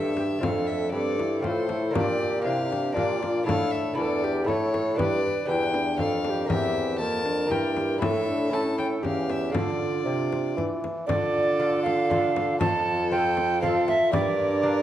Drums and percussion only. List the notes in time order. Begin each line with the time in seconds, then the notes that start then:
0.17 frame drum
0.43 frame drum
1.20 frame drum
1.44 frame drum
1.69 frame drum
1.95 frame drum
2.72 frame drum
2.97 frame drum
3.23 frame drum
3.49 frame drum
4.24 frame drum
4.48 frame drum
4.74 frame drum
4.99 frame drum
5.74 frame drum
5.99 frame drum
6.25 frame drum
6.50 frame drum
7.26 frame drum
7.51 frame drum
7.77 frame drum
8.02 frame drum
8.78 frame drum
9.05 frame drum
9.29 frame drum
9.55 frame drum
10.32 frame drum
10.58 frame drum
10.84 frame drum
11.09 frame drum
11.86 frame drum
12.11 frame drum
12.36 frame drum
12.61 frame drum
13.37 frame drum
13.63 frame drum
13.88 frame drum
14.13 frame drum